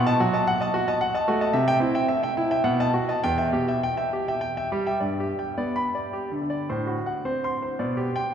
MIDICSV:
0, 0, Header, 1, 2, 480
1, 0, Start_track
1, 0, Key_signature, 1, "minor"
1, 0, Tempo, 544465
1, 1364, Time_signature, 3, 2, 24, 8
1, 2333, Tempo, 591716
1, 4251, Key_signature, 1, "major"
1, 4253, Tempo, 555556
1, 7129, End_track
2, 0, Start_track
2, 0, Title_t, "Grand piano"
2, 0, Program_c, 0, 0
2, 0, Note_on_c, 0, 47, 77
2, 56, Note_on_c, 0, 75, 59
2, 58, Note_on_c, 0, 81, 87
2, 140, Note_off_c, 0, 75, 0
2, 142, Note_off_c, 0, 81, 0
2, 167, Note_off_c, 0, 47, 0
2, 178, Note_on_c, 0, 54, 62
2, 179, Note_on_c, 0, 66, 67
2, 293, Note_on_c, 0, 75, 62
2, 299, Note_on_c, 0, 81, 66
2, 300, Note_off_c, 0, 66, 0
2, 378, Note_off_c, 0, 75, 0
2, 382, Note_off_c, 0, 81, 0
2, 418, Note_on_c, 0, 78, 78
2, 425, Note_off_c, 0, 54, 0
2, 535, Note_on_c, 0, 75, 61
2, 539, Note_off_c, 0, 78, 0
2, 544, Note_on_c, 0, 81, 66
2, 618, Note_off_c, 0, 75, 0
2, 624, Note_off_c, 0, 81, 0
2, 652, Note_on_c, 0, 66, 70
2, 774, Note_off_c, 0, 66, 0
2, 774, Note_on_c, 0, 75, 63
2, 775, Note_on_c, 0, 81, 64
2, 857, Note_off_c, 0, 75, 0
2, 858, Note_off_c, 0, 81, 0
2, 890, Note_on_c, 0, 78, 76
2, 1009, Note_on_c, 0, 75, 60
2, 1013, Note_off_c, 0, 78, 0
2, 1014, Note_on_c, 0, 81, 65
2, 1094, Note_off_c, 0, 75, 0
2, 1097, Note_off_c, 0, 81, 0
2, 1128, Note_on_c, 0, 66, 66
2, 1130, Note_on_c, 0, 57, 63
2, 1245, Note_on_c, 0, 81, 65
2, 1246, Note_on_c, 0, 75, 61
2, 1252, Note_off_c, 0, 66, 0
2, 1331, Note_off_c, 0, 81, 0
2, 1332, Note_off_c, 0, 75, 0
2, 1352, Note_on_c, 0, 76, 74
2, 1355, Note_on_c, 0, 48, 77
2, 1367, Note_off_c, 0, 57, 0
2, 1464, Note_off_c, 0, 76, 0
2, 1477, Note_on_c, 0, 76, 58
2, 1479, Note_on_c, 0, 79, 88
2, 1565, Note_off_c, 0, 76, 0
2, 1566, Note_off_c, 0, 79, 0
2, 1587, Note_on_c, 0, 60, 60
2, 1590, Note_off_c, 0, 48, 0
2, 1591, Note_on_c, 0, 64, 64
2, 1716, Note_on_c, 0, 76, 59
2, 1719, Note_on_c, 0, 79, 64
2, 1722, Note_off_c, 0, 64, 0
2, 1804, Note_off_c, 0, 76, 0
2, 1806, Note_off_c, 0, 79, 0
2, 1837, Note_on_c, 0, 76, 73
2, 1846, Note_off_c, 0, 60, 0
2, 1951, Note_off_c, 0, 76, 0
2, 1964, Note_on_c, 0, 76, 60
2, 1970, Note_on_c, 0, 79, 62
2, 2051, Note_off_c, 0, 76, 0
2, 2055, Note_off_c, 0, 79, 0
2, 2090, Note_on_c, 0, 64, 62
2, 2213, Note_on_c, 0, 79, 60
2, 2214, Note_on_c, 0, 76, 56
2, 2217, Note_off_c, 0, 64, 0
2, 2300, Note_off_c, 0, 79, 0
2, 2301, Note_off_c, 0, 76, 0
2, 2326, Note_on_c, 0, 47, 69
2, 2328, Note_on_c, 0, 78, 67
2, 2451, Note_off_c, 0, 78, 0
2, 2458, Note_on_c, 0, 75, 57
2, 2460, Note_on_c, 0, 81, 73
2, 2538, Note_off_c, 0, 75, 0
2, 2539, Note_off_c, 0, 81, 0
2, 2554, Note_off_c, 0, 47, 0
2, 2569, Note_on_c, 0, 66, 59
2, 2690, Note_on_c, 0, 75, 51
2, 2692, Note_off_c, 0, 66, 0
2, 2693, Note_on_c, 0, 81, 57
2, 2775, Note_off_c, 0, 75, 0
2, 2777, Note_off_c, 0, 81, 0
2, 2811, Note_on_c, 0, 79, 80
2, 2815, Note_on_c, 0, 40, 64
2, 2916, Note_off_c, 0, 79, 0
2, 2928, Note_on_c, 0, 76, 50
2, 2928, Note_on_c, 0, 79, 57
2, 3016, Note_off_c, 0, 76, 0
2, 3016, Note_off_c, 0, 79, 0
2, 3047, Note_on_c, 0, 47, 50
2, 3048, Note_off_c, 0, 40, 0
2, 3050, Note_on_c, 0, 67, 55
2, 3173, Note_on_c, 0, 76, 50
2, 3175, Note_on_c, 0, 79, 56
2, 3178, Note_off_c, 0, 67, 0
2, 3260, Note_off_c, 0, 76, 0
2, 3261, Note_off_c, 0, 79, 0
2, 3297, Note_on_c, 0, 79, 64
2, 3303, Note_off_c, 0, 47, 0
2, 3399, Note_off_c, 0, 79, 0
2, 3409, Note_on_c, 0, 76, 50
2, 3411, Note_on_c, 0, 79, 56
2, 3497, Note_off_c, 0, 76, 0
2, 3499, Note_off_c, 0, 79, 0
2, 3537, Note_on_c, 0, 67, 54
2, 3660, Note_on_c, 0, 79, 53
2, 3661, Note_off_c, 0, 67, 0
2, 3661, Note_on_c, 0, 76, 50
2, 3744, Note_off_c, 0, 79, 0
2, 3745, Note_off_c, 0, 76, 0
2, 3764, Note_on_c, 0, 79, 58
2, 3883, Note_off_c, 0, 79, 0
2, 3895, Note_on_c, 0, 76, 50
2, 3895, Note_on_c, 0, 79, 53
2, 3982, Note_off_c, 0, 76, 0
2, 3982, Note_off_c, 0, 79, 0
2, 4015, Note_on_c, 0, 55, 55
2, 4015, Note_on_c, 0, 67, 57
2, 4134, Note_on_c, 0, 76, 51
2, 4134, Note_on_c, 0, 79, 55
2, 4141, Note_off_c, 0, 67, 0
2, 4218, Note_off_c, 0, 76, 0
2, 4218, Note_off_c, 0, 79, 0
2, 4244, Note_on_c, 0, 74, 46
2, 4246, Note_on_c, 0, 43, 47
2, 4251, Note_off_c, 0, 55, 0
2, 4415, Note_on_c, 0, 67, 42
2, 4418, Note_off_c, 0, 74, 0
2, 4484, Note_off_c, 0, 43, 0
2, 4577, Note_on_c, 0, 79, 43
2, 4584, Note_off_c, 0, 67, 0
2, 4739, Note_on_c, 0, 59, 42
2, 4739, Note_on_c, 0, 74, 48
2, 4746, Note_off_c, 0, 79, 0
2, 4896, Note_on_c, 0, 83, 59
2, 4907, Note_off_c, 0, 74, 0
2, 4992, Note_off_c, 0, 59, 0
2, 5060, Note_on_c, 0, 74, 43
2, 5066, Note_off_c, 0, 83, 0
2, 5220, Note_on_c, 0, 67, 46
2, 5229, Note_off_c, 0, 74, 0
2, 5377, Note_on_c, 0, 50, 44
2, 5389, Note_off_c, 0, 67, 0
2, 5453, Note_off_c, 0, 50, 0
2, 5466, Note_on_c, 0, 50, 42
2, 5537, Note_on_c, 0, 74, 44
2, 5699, Note_off_c, 0, 74, 0
2, 5704, Note_off_c, 0, 50, 0
2, 5706, Note_on_c, 0, 45, 50
2, 5706, Note_on_c, 0, 72, 46
2, 5858, Note_on_c, 0, 66, 40
2, 5871, Note_off_c, 0, 72, 0
2, 5935, Note_off_c, 0, 45, 0
2, 6024, Note_on_c, 0, 78, 41
2, 6026, Note_off_c, 0, 66, 0
2, 6186, Note_on_c, 0, 60, 43
2, 6187, Note_on_c, 0, 72, 48
2, 6188, Note_off_c, 0, 78, 0
2, 6349, Note_off_c, 0, 72, 0
2, 6352, Note_on_c, 0, 84, 57
2, 6433, Note_off_c, 0, 60, 0
2, 6508, Note_on_c, 0, 72, 44
2, 6512, Note_off_c, 0, 84, 0
2, 6653, Note_on_c, 0, 74, 45
2, 6655, Note_on_c, 0, 47, 53
2, 6661, Note_off_c, 0, 72, 0
2, 6807, Note_on_c, 0, 67, 44
2, 6821, Note_off_c, 0, 74, 0
2, 6886, Note_off_c, 0, 47, 0
2, 6968, Note_on_c, 0, 79, 66
2, 6977, Note_off_c, 0, 67, 0
2, 7129, Note_off_c, 0, 79, 0
2, 7129, End_track
0, 0, End_of_file